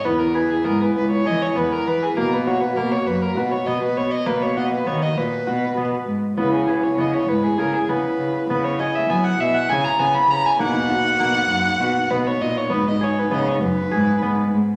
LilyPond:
<<
  \new Staff \with { instrumentName = "Violin" } { \time 7/8 \key b \major \tempo 4 = 100 b'16 ais'16 b'16 gis'16 ais'16 b'16 b'16 cis''16 dis''16 cis''16 b'16 ais'16 b'16 gis'16 | ais'16 b'16 cis''16 b'16 ais'16 cis''16 b'16 ais'16 b'16 cis''16 dis''16 b'16 cis''16 dis''16 | b'16 cis''16 dis''16 b'16 cis''16 dis''16 b'4. r8 | b'16 gis'16 b'16 cis''16 dis''16 cis''16 b'16 gis'16 ais'16 gis'16 b'4 |
b'16 cis''16 dis''16 e''16 gis''16 fis''16 e''16 fis''16 gis''16 ais''16 gis''16 b''16 ais''16 gis''16 | fis''2~ fis''8 b'16 cis''16 dis''16 cis''16 | b'16 dis''16 cis''16 b'16 dis''16 cis''16 b'4. r8 | }
  \new Staff \with { instrumentName = "Vibraphone" } { \time 7/8 \key b \major e'2.~ e'8 | fis'2.~ fis'8~ | fis'2. r8 | e'2.~ e'8~ |
e'2.~ e'8 | dis'2.~ dis'8 | dis'2. r8 | }
  \new Staff \with { instrumentName = "Harp" } { \time 7/8 \key b \major b8 gis'8 b4 gis'8 b4 | ais8 fis'8 ais4 fis'8 b4 | ais8 fis'8 b4 fis'8 b4 | b8 gis'8 b4 gis'8 b4 |
b8 gis'8 b4 gis'8 b4 | ais8 fis'8 ais4 fis'8 b4 | b8 gis'8 b4 gis'8 b4 | }
  \new Staff \with { instrumentName = "Cello" } { \clef bass \time 7/8 \key b \major e,4 gis,8 cis,16 r16 e8 e,8 e16 r16 | b,4 b,8 fis,8 b,16 r16 b,16 r16 b,16 r16 | b,4 dis8 ais,16 r16 b,8 b,8 gis,16 r16 | cis4 cis8 gis,8 cis16 r16 cis16 r16 cis16 r16 |
cis4 fis8 b,16 r16 cis8 cis8 cis16 r16 | b,4 b,8 fis,8 b,16 r16 b,16 r16 ais,16 r16 | gis,4 cis8 fis,16 r16 gis,8 gis,8 gis,16 r16 | }
>>